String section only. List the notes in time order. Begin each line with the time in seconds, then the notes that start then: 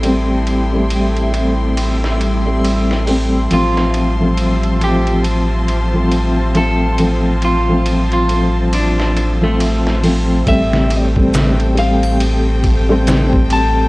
Already playing: E4 A4 G5 C6
3.52 F4 C5 A5
10.47 A3 A4 C5 G5